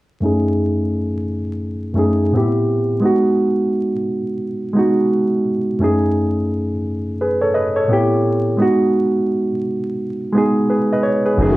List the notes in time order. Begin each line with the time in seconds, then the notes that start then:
0.21 F#2 A3 C#4 D#4
0.26 G#4
1.94 F#2 A3 C#4 D#4
1.99 G#4
2.32 A2 B3 C4
2.36 E4 G4
3.00 G#3 B3 D#4
3.05 F#4
4.73 G#3 B3 D#4
4.78 F#4
5.79 F#2 A3 C#4 D#4
5.84 G#4
7.21 G#4 B4
7.41 A4 C#5
7.54 B4 D#5
7.76 A4 C#5
7.88 A2 B3 C4 E4
7.93 G4
8.57 G#3 B3 D#4
8.62 F#4
10.33 G#3 B3 D#4
10.38 G#4
10.70 G#4 B4
10.93 B4 D#5
11.03 C#5
11.26 G#4 B4
11.37 F#1 F#2 D#3 F#3 A3 C#4 F#4
11.41 D#4 G#4